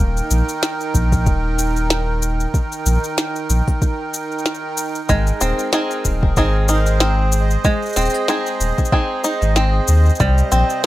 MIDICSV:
0, 0, Header, 1, 5, 480
1, 0, Start_track
1, 0, Key_signature, -3, "major"
1, 0, Tempo, 638298
1, 1910, Time_signature, 4, 2, 24, 8
1, 8167, End_track
2, 0, Start_track
2, 0, Title_t, "Accordion"
2, 0, Program_c, 0, 21
2, 0, Note_on_c, 0, 51, 71
2, 0, Note_on_c, 0, 70, 76
2, 0, Note_on_c, 0, 79, 78
2, 171, Note_on_c, 0, 63, 72
2, 3829, Note_on_c, 0, 56, 74
2, 3830, Note_off_c, 0, 51, 0
2, 4040, Note_on_c, 0, 68, 59
2, 4681, Note_off_c, 0, 63, 0
2, 4939, Note_off_c, 0, 79, 0
2, 5059, Note_on_c, 0, 72, 76
2, 5377, Note_off_c, 0, 70, 0
2, 5567, Note_on_c, 0, 75, 74
2, 7669, Note_off_c, 0, 56, 0
2, 7669, Note_off_c, 0, 68, 0
2, 7673, Note_on_c, 0, 48, 77
2, 8167, Note_off_c, 0, 48, 0
2, 8167, Note_off_c, 0, 72, 0
2, 8167, Note_off_c, 0, 75, 0
2, 8167, End_track
3, 0, Start_track
3, 0, Title_t, "Five-string banjo"
3, 0, Program_c, 1, 105
3, 0, Note_on_c, 1, 58, 61
3, 419, Note_off_c, 1, 58, 0
3, 3829, Note_on_c, 1, 56, 79
3, 4069, Note_on_c, 1, 60, 61
3, 4307, Note_off_c, 1, 60, 0
3, 4310, Note_on_c, 1, 60, 62
3, 4315, Note_on_c, 1, 63, 64
3, 4319, Note_on_c, 1, 68, 67
3, 4788, Note_off_c, 1, 60, 0
3, 4790, Note_off_c, 1, 68, 0
3, 4791, Note_on_c, 1, 60, 59
3, 4793, Note_off_c, 1, 63, 0
3, 4796, Note_on_c, 1, 63, 63
3, 4799, Note_on_c, 1, 68, 66
3, 5027, Note_off_c, 1, 68, 0
3, 5030, Note_off_c, 1, 63, 0
3, 5030, Note_on_c, 1, 63, 62
3, 5270, Note_off_c, 1, 60, 0
3, 5270, Note_on_c, 1, 60, 62
3, 5741, Note_off_c, 1, 56, 0
3, 5750, Note_on_c, 1, 56, 75
3, 5991, Note_off_c, 1, 60, 0
3, 5991, Note_on_c, 1, 60, 61
3, 6227, Note_off_c, 1, 63, 0
3, 6229, Note_off_c, 1, 60, 0
3, 6232, Note_on_c, 1, 60, 61
3, 6236, Note_on_c, 1, 63, 61
3, 6240, Note_on_c, 1, 68, 65
3, 6707, Note_off_c, 1, 60, 0
3, 6710, Note_off_c, 1, 68, 0
3, 6710, Note_on_c, 1, 60, 62
3, 6712, Note_off_c, 1, 63, 0
3, 6715, Note_on_c, 1, 63, 62
3, 6719, Note_on_c, 1, 68, 65
3, 6947, Note_off_c, 1, 68, 0
3, 6950, Note_off_c, 1, 63, 0
3, 6950, Note_on_c, 1, 63, 60
3, 7189, Note_off_c, 1, 60, 0
3, 7192, Note_on_c, 1, 60, 60
3, 7668, Note_off_c, 1, 56, 0
3, 7671, Note_on_c, 1, 55, 78
3, 7909, Note_off_c, 1, 60, 0
3, 7909, Note_on_c, 1, 60, 61
3, 8003, Note_off_c, 1, 63, 0
3, 8141, Note_off_c, 1, 60, 0
3, 8167, Note_off_c, 1, 55, 0
3, 8167, End_track
4, 0, Start_track
4, 0, Title_t, "Sub bass"
4, 0, Program_c, 2, 38
4, 0, Note_on_c, 2, 27, 94
4, 159, Note_off_c, 2, 27, 0
4, 231, Note_on_c, 2, 34, 94
4, 320, Note_off_c, 2, 34, 0
4, 711, Note_on_c, 2, 34, 97
4, 951, Note_on_c, 2, 27, 82
4, 962, Note_off_c, 2, 34, 0
4, 1854, Note_off_c, 2, 27, 0
4, 2150, Note_on_c, 2, 34, 98
4, 2239, Note_off_c, 2, 34, 0
4, 2630, Note_on_c, 2, 34, 92
4, 2719, Note_off_c, 2, 34, 0
4, 3832, Note_on_c, 2, 32, 89
4, 4000, Note_off_c, 2, 32, 0
4, 4070, Note_on_c, 2, 27, 101
4, 4159, Note_off_c, 2, 27, 0
4, 4551, Note_on_c, 2, 27, 100
4, 4790, Note_on_c, 2, 32, 88
4, 4801, Note_off_c, 2, 27, 0
4, 5693, Note_off_c, 2, 32, 0
4, 5991, Note_on_c, 2, 27, 96
4, 6079, Note_off_c, 2, 27, 0
4, 6470, Note_on_c, 2, 27, 96
4, 6559, Note_off_c, 2, 27, 0
4, 7083, Note_on_c, 2, 32, 90
4, 7373, Note_off_c, 2, 32, 0
4, 7431, Note_on_c, 2, 39, 75
4, 7599, Note_off_c, 2, 39, 0
4, 7672, Note_on_c, 2, 36, 96
4, 7840, Note_off_c, 2, 36, 0
4, 7911, Note_on_c, 2, 34, 101
4, 8000, Note_off_c, 2, 34, 0
4, 8167, End_track
5, 0, Start_track
5, 0, Title_t, "Drums"
5, 128, Note_on_c, 9, 82, 27
5, 203, Note_off_c, 9, 82, 0
5, 231, Note_on_c, 9, 82, 78
5, 306, Note_off_c, 9, 82, 0
5, 367, Note_on_c, 9, 82, 30
5, 442, Note_off_c, 9, 82, 0
5, 472, Note_on_c, 9, 38, 98
5, 472, Note_on_c, 9, 82, 41
5, 547, Note_off_c, 9, 38, 0
5, 548, Note_off_c, 9, 82, 0
5, 606, Note_on_c, 9, 82, 27
5, 682, Note_off_c, 9, 82, 0
5, 710, Note_on_c, 9, 36, 54
5, 712, Note_on_c, 9, 82, 69
5, 785, Note_off_c, 9, 36, 0
5, 788, Note_off_c, 9, 82, 0
5, 845, Note_on_c, 9, 36, 91
5, 846, Note_on_c, 9, 82, 30
5, 920, Note_off_c, 9, 36, 0
5, 922, Note_off_c, 9, 82, 0
5, 950, Note_on_c, 9, 36, 100
5, 951, Note_on_c, 9, 82, 41
5, 1026, Note_off_c, 9, 36, 0
5, 1026, Note_off_c, 9, 82, 0
5, 1193, Note_on_c, 9, 82, 71
5, 1269, Note_off_c, 9, 82, 0
5, 1327, Note_on_c, 9, 82, 28
5, 1402, Note_off_c, 9, 82, 0
5, 1432, Note_on_c, 9, 38, 97
5, 1432, Note_on_c, 9, 82, 39
5, 1507, Note_off_c, 9, 38, 0
5, 1507, Note_off_c, 9, 82, 0
5, 1672, Note_on_c, 9, 82, 73
5, 1747, Note_off_c, 9, 82, 0
5, 1807, Note_on_c, 9, 82, 30
5, 1882, Note_off_c, 9, 82, 0
5, 1910, Note_on_c, 9, 36, 102
5, 1914, Note_on_c, 9, 82, 42
5, 1986, Note_off_c, 9, 36, 0
5, 1989, Note_off_c, 9, 82, 0
5, 2047, Note_on_c, 9, 82, 28
5, 2122, Note_off_c, 9, 82, 0
5, 2151, Note_on_c, 9, 82, 82
5, 2226, Note_off_c, 9, 82, 0
5, 2286, Note_on_c, 9, 82, 31
5, 2361, Note_off_c, 9, 82, 0
5, 2390, Note_on_c, 9, 38, 102
5, 2391, Note_on_c, 9, 82, 45
5, 2466, Note_off_c, 9, 38, 0
5, 2466, Note_off_c, 9, 82, 0
5, 2525, Note_on_c, 9, 82, 30
5, 2600, Note_off_c, 9, 82, 0
5, 2631, Note_on_c, 9, 82, 75
5, 2706, Note_off_c, 9, 82, 0
5, 2765, Note_on_c, 9, 36, 100
5, 2766, Note_on_c, 9, 82, 32
5, 2840, Note_off_c, 9, 36, 0
5, 2841, Note_off_c, 9, 82, 0
5, 2871, Note_on_c, 9, 36, 115
5, 2872, Note_on_c, 9, 82, 42
5, 2946, Note_off_c, 9, 36, 0
5, 2947, Note_off_c, 9, 82, 0
5, 3112, Note_on_c, 9, 82, 74
5, 3187, Note_off_c, 9, 82, 0
5, 3246, Note_on_c, 9, 82, 12
5, 3298, Note_off_c, 9, 82, 0
5, 3298, Note_on_c, 9, 82, 17
5, 3352, Note_off_c, 9, 82, 0
5, 3352, Note_on_c, 9, 38, 92
5, 3352, Note_on_c, 9, 82, 39
5, 3418, Note_off_c, 9, 82, 0
5, 3418, Note_on_c, 9, 82, 25
5, 3427, Note_off_c, 9, 38, 0
5, 3494, Note_off_c, 9, 82, 0
5, 3590, Note_on_c, 9, 82, 82
5, 3665, Note_off_c, 9, 82, 0
5, 3724, Note_on_c, 9, 82, 31
5, 3799, Note_off_c, 9, 82, 0
5, 3828, Note_on_c, 9, 82, 39
5, 3830, Note_on_c, 9, 36, 105
5, 3904, Note_off_c, 9, 82, 0
5, 3906, Note_off_c, 9, 36, 0
5, 3962, Note_on_c, 9, 82, 29
5, 4037, Note_off_c, 9, 82, 0
5, 4067, Note_on_c, 9, 82, 82
5, 4143, Note_off_c, 9, 82, 0
5, 4204, Note_on_c, 9, 82, 30
5, 4279, Note_off_c, 9, 82, 0
5, 4306, Note_on_c, 9, 38, 100
5, 4307, Note_on_c, 9, 82, 46
5, 4382, Note_off_c, 9, 38, 0
5, 4382, Note_off_c, 9, 82, 0
5, 4443, Note_on_c, 9, 82, 30
5, 4518, Note_off_c, 9, 82, 0
5, 4550, Note_on_c, 9, 36, 62
5, 4550, Note_on_c, 9, 82, 73
5, 4625, Note_off_c, 9, 36, 0
5, 4625, Note_off_c, 9, 82, 0
5, 4684, Note_on_c, 9, 36, 106
5, 4759, Note_off_c, 9, 36, 0
5, 4788, Note_on_c, 9, 82, 40
5, 4789, Note_on_c, 9, 36, 104
5, 4863, Note_off_c, 9, 82, 0
5, 4865, Note_off_c, 9, 36, 0
5, 5027, Note_on_c, 9, 82, 75
5, 5102, Note_off_c, 9, 82, 0
5, 5162, Note_on_c, 9, 82, 30
5, 5237, Note_off_c, 9, 82, 0
5, 5267, Note_on_c, 9, 38, 93
5, 5267, Note_on_c, 9, 82, 43
5, 5342, Note_off_c, 9, 38, 0
5, 5343, Note_off_c, 9, 82, 0
5, 5507, Note_on_c, 9, 82, 78
5, 5582, Note_off_c, 9, 82, 0
5, 5644, Note_on_c, 9, 82, 32
5, 5719, Note_off_c, 9, 82, 0
5, 5749, Note_on_c, 9, 82, 43
5, 5750, Note_on_c, 9, 36, 109
5, 5824, Note_off_c, 9, 82, 0
5, 5825, Note_off_c, 9, 36, 0
5, 5884, Note_on_c, 9, 82, 13
5, 5910, Note_off_c, 9, 82, 0
5, 5910, Note_on_c, 9, 82, 15
5, 5936, Note_off_c, 9, 82, 0
5, 5936, Note_on_c, 9, 82, 17
5, 5961, Note_off_c, 9, 82, 0
5, 5961, Note_on_c, 9, 82, 18
5, 5988, Note_on_c, 9, 38, 30
5, 5989, Note_off_c, 9, 82, 0
5, 5989, Note_on_c, 9, 82, 82
5, 6024, Note_off_c, 9, 82, 0
5, 6024, Note_on_c, 9, 82, 24
5, 6056, Note_off_c, 9, 82, 0
5, 6056, Note_on_c, 9, 82, 26
5, 6063, Note_off_c, 9, 38, 0
5, 6090, Note_off_c, 9, 82, 0
5, 6090, Note_on_c, 9, 82, 28
5, 6124, Note_off_c, 9, 82, 0
5, 6124, Note_on_c, 9, 82, 30
5, 6199, Note_off_c, 9, 82, 0
5, 6229, Note_on_c, 9, 38, 90
5, 6229, Note_on_c, 9, 82, 46
5, 6304, Note_off_c, 9, 38, 0
5, 6305, Note_off_c, 9, 82, 0
5, 6366, Note_on_c, 9, 82, 30
5, 6441, Note_off_c, 9, 82, 0
5, 6472, Note_on_c, 9, 82, 67
5, 6547, Note_off_c, 9, 82, 0
5, 6604, Note_on_c, 9, 82, 32
5, 6605, Note_on_c, 9, 36, 91
5, 6657, Note_off_c, 9, 82, 0
5, 6657, Note_on_c, 9, 82, 43
5, 6680, Note_off_c, 9, 36, 0
5, 6710, Note_on_c, 9, 36, 110
5, 6732, Note_off_c, 9, 82, 0
5, 6786, Note_off_c, 9, 36, 0
5, 6949, Note_on_c, 9, 82, 72
5, 7024, Note_off_c, 9, 82, 0
5, 7084, Note_on_c, 9, 82, 29
5, 7159, Note_off_c, 9, 82, 0
5, 7189, Note_on_c, 9, 38, 87
5, 7189, Note_on_c, 9, 82, 41
5, 7264, Note_off_c, 9, 38, 0
5, 7265, Note_off_c, 9, 82, 0
5, 7428, Note_on_c, 9, 82, 79
5, 7503, Note_off_c, 9, 82, 0
5, 7564, Note_on_c, 9, 82, 14
5, 7591, Note_off_c, 9, 82, 0
5, 7591, Note_on_c, 9, 82, 19
5, 7635, Note_off_c, 9, 82, 0
5, 7635, Note_on_c, 9, 82, 24
5, 7669, Note_off_c, 9, 82, 0
5, 7669, Note_on_c, 9, 82, 41
5, 7671, Note_on_c, 9, 36, 110
5, 7744, Note_off_c, 9, 82, 0
5, 7746, Note_off_c, 9, 36, 0
5, 7805, Note_on_c, 9, 82, 26
5, 7880, Note_off_c, 9, 82, 0
5, 7909, Note_on_c, 9, 82, 80
5, 7985, Note_off_c, 9, 82, 0
5, 8045, Note_on_c, 9, 82, 31
5, 8120, Note_off_c, 9, 82, 0
5, 8167, End_track
0, 0, End_of_file